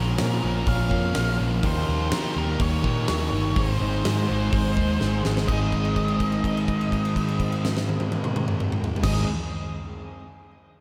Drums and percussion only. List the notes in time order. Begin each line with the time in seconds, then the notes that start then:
0.18 snare, open hi-hat
0.67 kick, open hi-hat
0.91 kick
1.15 snare, open hi-hat
1.63 kick, open hi-hat
2.12 snare, open hi-hat
2.60 kick, open hi-hat
2.84 kick
3.08 snare, open hi-hat
3.56 kick, open hi-hat
4.05 snare, open hi-hat
4.53 kick, open hi-hat
4.77 kick
5.01 snare
5.25 snare
5.37 snare
5.48 kick, crash
5.72 kick, crash
5.85 crash
5.96 kick, crash
6.08 crash
6.20 kick, crash
6.32 crash
6.44 kick, crash
6.57 crash
6.68 kick, crash
6.81 crash
6.92 kick, crash
7.05 crash
7.16 kick, crash
7.28 crash
7.40 kick, crash
7.52 crash
7.65 snare
7.77 snare
7.89 high tom
8.00 high tom
8.12 high tom
8.24 mid tom
8.36 mid tom
8.48 mid tom
8.60 mid tom
8.72 mid tom
8.84 floor tom
8.96 floor tom
9.03 kick, snare, crash